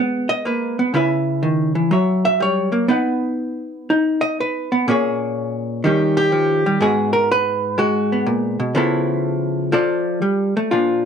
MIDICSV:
0, 0, Header, 1, 2, 480
1, 0, Start_track
1, 0, Tempo, 489396
1, 908, Time_signature, 4, 2, 24, 8
1, 10839, End_track
2, 0, Start_track
2, 0, Title_t, "Hollow-body jazz guitar"
2, 0, Program_c, 0, 26
2, 0, Note_on_c, 0, 56, 84
2, 0, Note_on_c, 0, 59, 80
2, 287, Note_on_c, 0, 75, 120
2, 435, Note_off_c, 0, 75, 0
2, 441, Note_off_c, 0, 59, 0
2, 445, Note_on_c, 0, 58, 65
2, 457, Note_on_c, 0, 71, 64
2, 763, Note_off_c, 0, 58, 0
2, 776, Note_on_c, 0, 59, 69
2, 887, Note_off_c, 0, 56, 0
2, 918, Note_off_c, 0, 59, 0
2, 919, Note_on_c, 0, 49, 80
2, 920, Note_off_c, 0, 71, 0
2, 926, Note_on_c, 0, 61, 66
2, 931, Note_on_c, 0, 64, 67
2, 939, Note_on_c, 0, 71, 68
2, 947, Note_on_c, 0, 76, 67
2, 1399, Note_on_c, 0, 51, 67
2, 1715, Note_off_c, 0, 51, 0
2, 1718, Note_on_c, 0, 52, 62
2, 1853, Note_off_c, 0, 49, 0
2, 1856, Note_off_c, 0, 61, 0
2, 1859, Note_off_c, 0, 64, 0
2, 1864, Note_off_c, 0, 71, 0
2, 1865, Note_off_c, 0, 76, 0
2, 1869, Note_off_c, 0, 52, 0
2, 1873, Note_on_c, 0, 54, 84
2, 1887, Note_on_c, 0, 73, 58
2, 1894, Note_on_c, 0, 76, 50
2, 2196, Note_off_c, 0, 76, 0
2, 2207, Note_on_c, 0, 76, 112
2, 2356, Note_off_c, 0, 76, 0
2, 2356, Note_on_c, 0, 55, 58
2, 2362, Note_off_c, 0, 73, 0
2, 2377, Note_on_c, 0, 73, 92
2, 2666, Note_off_c, 0, 55, 0
2, 2670, Note_on_c, 0, 58, 63
2, 2821, Note_off_c, 0, 54, 0
2, 2828, Note_on_c, 0, 59, 79
2, 2830, Note_off_c, 0, 58, 0
2, 2836, Note_on_c, 0, 63, 52
2, 2837, Note_off_c, 0, 73, 0
2, 2841, Note_on_c, 0, 71, 56
2, 2851, Note_on_c, 0, 78, 54
2, 3808, Note_off_c, 0, 63, 0
2, 3825, Note_on_c, 0, 63, 73
2, 4127, Note_off_c, 0, 71, 0
2, 4131, Note_on_c, 0, 75, 118
2, 4288, Note_off_c, 0, 75, 0
2, 4320, Note_on_c, 0, 71, 84
2, 4617, Note_off_c, 0, 59, 0
2, 4625, Note_off_c, 0, 63, 0
2, 4629, Note_on_c, 0, 59, 73
2, 4764, Note_off_c, 0, 78, 0
2, 4779, Note_off_c, 0, 59, 0
2, 4784, Note_on_c, 0, 46, 87
2, 4789, Note_off_c, 0, 71, 0
2, 4791, Note_on_c, 0, 58, 69
2, 4800, Note_on_c, 0, 61, 69
2, 4808, Note_on_c, 0, 68, 68
2, 4816, Note_on_c, 0, 73, 72
2, 5712, Note_off_c, 0, 46, 0
2, 5724, Note_off_c, 0, 68, 0
2, 5728, Note_on_c, 0, 51, 87
2, 5737, Note_off_c, 0, 58, 0
2, 5741, Note_on_c, 0, 55, 68
2, 5742, Note_off_c, 0, 61, 0
2, 5746, Note_on_c, 0, 61, 51
2, 5751, Note_on_c, 0, 63, 58
2, 5754, Note_off_c, 0, 73, 0
2, 5758, Note_on_c, 0, 67, 59
2, 6040, Note_off_c, 0, 67, 0
2, 6052, Note_on_c, 0, 67, 109
2, 6196, Note_off_c, 0, 55, 0
2, 6200, Note_on_c, 0, 53, 67
2, 6523, Note_off_c, 0, 53, 0
2, 6534, Note_on_c, 0, 55, 75
2, 6657, Note_off_c, 0, 51, 0
2, 6669, Note_off_c, 0, 63, 0
2, 6674, Note_on_c, 0, 44, 86
2, 6676, Note_off_c, 0, 67, 0
2, 6680, Note_off_c, 0, 55, 0
2, 6684, Note_on_c, 0, 56, 61
2, 6688, Note_off_c, 0, 61, 0
2, 6689, Note_on_c, 0, 68, 88
2, 6692, Note_on_c, 0, 59, 60
2, 6699, Note_on_c, 0, 66, 58
2, 6988, Note_off_c, 0, 68, 0
2, 6992, Note_on_c, 0, 70, 109
2, 7146, Note_off_c, 0, 70, 0
2, 7175, Note_on_c, 0, 71, 127
2, 7617, Note_off_c, 0, 56, 0
2, 7626, Note_off_c, 0, 66, 0
2, 7629, Note_on_c, 0, 56, 81
2, 7635, Note_off_c, 0, 71, 0
2, 7637, Note_on_c, 0, 66, 95
2, 7955, Note_off_c, 0, 59, 0
2, 7968, Note_on_c, 0, 59, 52
2, 8098, Note_off_c, 0, 44, 0
2, 8106, Note_off_c, 0, 66, 0
2, 8106, Note_on_c, 0, 46, 75
2, 8426, Note_off_c, 0, 46, 0
2, 8430, Note_on_c, 0, 47, 79
2, 8563, Note_off_c, 0, 56, 0
2, 8570, Note_off_c, 0, 59, 0
2, 8579, Note_on_c, 0, 49, 89
2, 8580, Note_off_c, 0, 47, 0
2, 8587, Note_on_c, 0, 53, 72
2, 8592, Note_on_c, 0, 59, 76
2, 8603, Note_on_c, 0, 64, 69
2, 8606, Note_on_c, 0, 69, 75
2, 9517, Note_off_c, 0, 49, 0
2, 9524, Note_off_c, 0, 59, 0
2, 9526, Note_off_c, 0, 53, 0
2, 9529, Note_off_c, 0, 69, 0
2, 9530, Note_off_c, 0, 64, 0
2, 9536, Note_on_c, 0, 53, 88
2, 9545, Note_on_c, 0, 65, 69
2, 9545, Note_on_c, 0, 69, 76
2, 9552, Note_on_c, 0, 74, 87
2, 10017, Note_off_c, 0, 53, 0
2, 10021, Note_on_c, 0, 55, 70
2, 10357, Note_off_c, 0, 55, 0
2, 10363, Note_on_c, 0, 57, 76
2, 10494, Note_off_c, 0, 65, 0
2, 10499, Note_off_c, 0, 69, 0
2, 10503, Note_off_c, 0, 74, 0
2, 10506, Note_on_c, 0, 65, 83
2, 10515, Note_off_c, 0, 57, 0
2, 10515, Note_on_c, 0, 46, 68
2, 10520, Note_on_c, 0, 53, 45
2, 10527, Note_on_c, 0, 62, 45
2, 10839, Note_off_c, 0, 46, 0
2, 10839, Note_off_c, 0, 53, 0
2, 10839, Note_off_c, 0, 62, 0
2, 10839, Note_off_c, 0, 65, 0
2, 10839, End_track
0, 0, End_of_file